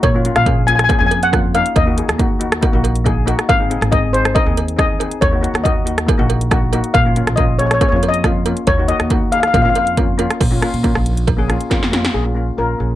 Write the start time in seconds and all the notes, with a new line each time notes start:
0.03 A#1 C#5, kick, closed hi-hat, cowbell
0.14 A#3 C#4 F4
0.25 A#3 C#4 F4, closed hi-hat
0.36 A#1 F5, cross-stick, closed hi-hat
0.46 A#3 C#4 G#4, kick, closed hi-hat, cowbell
0.67 A#3 C#4 F4 G#5, closed hi-hat
0.75 G#5, cross-stick, closed hi-hat
0.84 G#5
0.89 A#3 C#4 G#4 G#5, kick, closed hi-hat, cowbell
0.99 F2 A#3 C#4 G#4 G#5
1.06 G#5
1.11 closed hi-hat, cowbell
1.23 F#5, closed hi-hat
1.32 A#3 C#4 F4, kick, cross-stick, closed hi-hat, cowbell
1.54 A#3 C#4 D#4 F5, closed hi-hat, cowbell
1.66 closed hi-hat
1.76 D#2 D#5, kick, closed hi-hat, cowbell
1.86 A#3 D#4 F#4
1.97 A#3 D#4 G#4, closed hi-hat
2.08 D#2, cross-stick, closed hi-hat
2.18 A#3 D#4 F#4, kick, closed hi-hat, cowbell
2.39 A#3 D#4 F#4, closed hi-hat
2.52 cross-stick, closed hi-hat
2.61 A#3 D#4 F#4, kick, closed hi-hat, cowbell
2.73 A#1 A#3 D#4 F#4
2.84 closed hi-hat, cowbell
2.95 closed hi-hat
3.04 A#3 D#4 G#4, kick, closed hi-hat, cowbell
3.26 A#3 D#4 F#4, closed hi-hat, cowbell
3.39 cross-stick, closed hi-hat
3.49 G#1 F5, kick, closed hi-hat, cowbell
3.59 C4 D#4 G#4
3.70 C4 D#4 G#4, closed hi-hat
3.81 G#1, cross-stick, closed hi-hat
3.90 C4 D#4 G#4 D#5, kick, closed hi-hat, cowbell
4.13 C4 D#4 G#4 C5, closed hi-hat
4.25 cross-stick, closed hi-hat
4.34 C4 D#4 A#4 D#5, kick, closed hi-hat, cowbell
4.45 D#2 C4 D#4 G#4
4.57 closed hi-hat, cowbell
4.68 closed hi-hat
4.77 C4 D#4 G#4 D#5, kick, cross-stick, closed hi-hat, cowbell
4.99 C4 D#4 G#4, closed hi-hat, cowbell
5.11 closed hi-hat
5.21 D#2 C#5, kick, closed hi-hat, cowbell
5.31 A#3 D#4 F#4
5.41 A#3 D#4 F#4, closed hi-hat
5.54 D#2, cross-stick, closed hi-hat
5.64 A#3 D#4 F#4 D#5, kick, closed hi-hat, cowbell
5.85 A#3 D#4 F#4, closed hi-hat
5.98 cross-stick, closed hi-hat
6.06 A#3 D#4 G#4, kick, closed hi-hat, cowbell
6.18 A#1 A#3 D#4 F#4
6.30 closed hi-hat, cowbell
6.41 closed hi-hat
6.51 A#3 D#4 F#4, kick, cross-stick, closed hi-hat, cowbell
6.73 A#3 D#4 F#4, closed hi-hat, cowbell
6.84 closed hi-hat
6.94 A#1 F5, kick, closed hi-hat, cowbell
7.05 A#3 C#4 F4
7.16 A#3 C#4 F4, closed hi-hat
7.27 A#1, cross-stick, closed hi-hat
7.36 A#3 C#4 F4 D#5, kick, closed hi-hat, cowbell
7.59 A#3 C#4 G#4 C#5, closed hi-hat
7.66 C#5
7.71 C#5, cross-stick, closed hi-hat
7.81 A#3 C#4 G#4 C#5, kick, closed hi-hat, cowbell
7.89 F2 A#3 C#4 C#5
7.94 F4 C#5
8.03 closed hi-hat, cowbell
8.09 D#5
8.14 closed hi-hat
8.24 A#3 C#4 F4, kick, cross-stick, closed hi-hat, cowbell
8.46 A#3 C#4 F4, closed hi-hat, cowbell
8.57 closed hi-hat
8.67 D#2 C#5, kick, closed hi-hat, cowbell
8.78 A#3 D#4 F#4
8.88 A#3 D#4 F#4 D#5, closed hi-hat
9.00 D#2, cross-stick, closed hi-hat
9.10 A#3 D#4 F#4, kick, closed hi-hat, cowbell
9.32 A#3 D#4 G#4 F5, closed hi-hat
9.40 F5, cross-stick, closed hi-hat
9.48 F5
9.53 A#1 A#3 C#4 F4 F5, kick, closed hi-hat, cowbell
9.62 F2 A#3 C#4 F4 F5
9.70 F5
9.75 F5, closed hi-hat, cowbell
9.85 F5, closed hi-hat
9.97 A#3 C#4 F4, kick, closed hi-hat, cowbell
10.18 A#3 C#4 F4, closed hi-hat, cowbell
10.30 cross-stick, closed hi-hat
10.41 A#1, kick, closed hi-hat, crash, cowbell
10.51 A#3 C#4 F4
10.61 A#3 C#4 F4, cross-stick, closed hi-hat
10.74 A#2, closed hi-hat
10.83 A#3 C#4 F4, kick, closed hi-hat, cowbell
10.95 A#1, cross-stick
11.06 closed hi-hat
11.17 closed hi-hat
11.27 kick, closed hi-hat, cowbell
11.37 A#3 C#4 G#4
11.48 A#3 C#4 F4, cross-stick, closed hi-hat
11.61 closed hi-hat
11.70 F2 A#3 C#4 F4, kick, snare, closed hi-hat, cowbell
11.83 snare
11.91 A#3 C#4 F4, snare, closed hi-hat
12.05 snare, closed hi-hat
12.14 A#1 G#4
12.24 A#3 C#4 F4
12.35 A#3 C#4 F4
12.57 A#1 A#3 C#4 F4 A#4
12.78 A#1 A#3 C#4 G#4